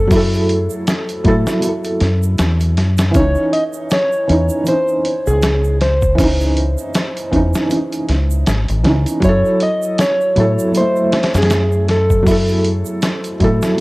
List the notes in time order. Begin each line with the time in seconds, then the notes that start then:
Already playing: F#2 F#3 A3 E4 A4
0.07 F#3, kick, open hi-hat, shaker
0.12 E4
0.16 A4
0.33 shaker
0.49 closed hi-hat
0.70 shaker
0.87 snare, closed hi-hat, shaker
1.09 closed hi-hat, shaker
1.24 A2 F#3 E4 A4, kick, closed hi-hat
1.47 snare, shaker
1.60 F#3, closed hi-hat, shaker
1.64 E4
1.68 A4
1.84 closed hi-hat, shaker
2.00 F#2, snare, closed hi-hat
2.23 shaker
2.38 E2, snare, closed hi-hat, shaker
2.60 closed hi-hat, shaker
2.77 F#2, snare, closed hi-hat
2.98 snare, closed hi-hat, shaker
3.11 E3, kick, closed hi-hat, shaker
3.15 C#2 C#4 C#5
3.20 D#4
3.35 shaker
3.53 D#5, closed hi-hat
3.73 shaker
3.90 C#5, snare, closed hi-hat, shaker
4.12 shaker
4.27 E2 E3 C#4, closed hi-hat
4.32 D#4
4.49 shaker
4.64 E3, closed hi-hat, shaker
4.68 C#4 C5
4.72 D#4
4.88 shaker
5.05 closed hi-hat
5.27 C#2 G#4, shaker
5.42 snare, closed hi-hat, shaker
5.64 shaker
5.81 C5, snare, closed hi-hat
6.02 kick, shaker
6.15 E3, kick, open hi-hat, shaker
6.19 C#4
6.24 D#4
6.41 shaker
6.57 closed hi-hat
6.78 shaker
6.94 snare, closed hi-hat, shaker
7.17 closed hi-hat, shaker
7.31 E2 E3 C#4, kick, closed hi-hat
7.36 D#4
7.54 snare, shaker
7.68 E3 C#4, closed hi-hat, shaker
7.76 D#4
7.92 closed hi-hat, shaker
8.09 C#2, snare, closed hi-hat
8.31 shaker
8.46 G#1, snare, closed hi-hat, shaker
8.68 G#1, closed hi-hat, shaker
8.84 C#2 E3 C#4 D#4, snare, closed hi-hat
9.06 closed hi-hat, shaker
9.20 F#2 F#3, kick, closed hi-hat, shaker
9.24 E4 C#5
9.29 A4
9.45 shaker
9.60 D#5, closed hi-hat
9.82 shaker
9.98 C#5, snare, closed hi-hat, shaker
10.21 shaker
10.36 A2 F#3 E4, closed hi-hat
10.40 A4
10.59 shaker
10.72 F#3, closed hi-hat, shaker
10.76 E4 C5
10.80 A3
10.96 shaker
11.12 snare, closed hi-hat
11.23 snare, closed hi-hat
11.34 F#2 G#4, snare, closed hi-hat, shaker
11.42 snare, closed hi-hat
11.50 snare, closed hi-hat, shaker
11.72 shaker
11.88 A4, snare, closed hi-hat
12.10 kick, shaker
12.23 F#3, kick
12.27 E4, open hi-hat, shaker
12.31 A4
12.48 shaker
12.65 closed hi-hat
12.85 shaker
13.02 snare, closed hi-hat, shaker
13.24 closed hi-hat, shaker
13.40 A2 F#3 E4, kick, closed hi-hat
13.44 A4
13.62 snare, shaker
13.76 F#3